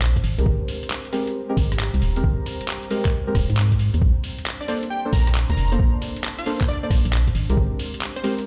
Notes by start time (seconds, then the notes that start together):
Already playing: A#1 D4 C5 A5
0.01 clap
0.16 kick, closed hi-hat
0.24 G#1 G4, open hi-hat
0.38 C2 G#3 C4 G4 A#4, closed hi-hat
0.46 G#1, kick
0.68 open hi-hat
0.83 A#5, closed hi-hat
0.90 clap
1.05 closed hi-hat
1.12 G#3 C4 G4 A#4, cross-stick, open hi-hat
1.27 closed hi-hat
1.49 G#3 C4 G4 A#4
1.57 G#1, kick, open hi-hat
1.72 cross-stick, closed hi-hat
1.79 clap
1.94 C2, closed hi-hat
2.02 D#1, open hi-hat
2.16 G#3 C4 G4 A#4, closed hi-hat
2.24 G#1, kick
2.46 cross-stick, open hi-hat
2.61 closed hi-hat
2.68 clap
2.83 closed hi-hat
2.90 G#3 C4 G4 A#4, open hi-hat
3.05 kick, clap, closed hi-hat
3.27 G#3 C4 G4 A#4
3.35 D#1, kick, cross-stick, open hi-hat
3.50 G#2, closed hi-hat
3.57 clap
3.72 kick, closed hi-hat
3.79 open hi-hat
3.94 D#2, closed hi-hat
4.02 A#1 D4, kick
4.24 open hi-hat
4.38 closed hi-hat
4.46 C6, clap
4.61 D5, closed hi-hat
4.68 A#3 D4 A4 C5 D5, cross-stick, open hi-hat
4.83 closed hi-hat
4.90 G5
5.05 A#3 D4 A4 C5
5.13 A#1 A#5, kick, open hi-hat
5.27 cross-stick, closed hi-hat
5.35 clap
5.50 D2 A#5, closed hi-hat
5.57 F1, open hi-hat
5.72 A#3 D4 A4 C5, closed hi-hat
5.79 A#1, kick
6.02 cross-stick, open hi-hat
6.16 closed hi-hat
6.24 clap
6.39 F5, closed hi-hat
6.46 A#3 D4 A4 C5, open hi-hat
6.61 kick, clap, closed hi-hat
6.69 D5
6.83 A#3 D4 A4 C5 D5
6.90 A#1, kick, cross-stick, open hi-hat
7.05 A#1, closed hi-hat
7.13 clap
7.27 kick, closed hi-hat
7.35 G#1 G4, open hi-hat
7.50 C2 G#3 C4 G4 A#4, closed hi-hat
7.57 G#1, kick
7.79 open hi-hat
7.94 closed hi-hat
8.01 clap
8.16 C5, closed hi-hat
8.24 G#3 C4 G4 A#4 C5, open hi-hat
8.38 closed hi-hat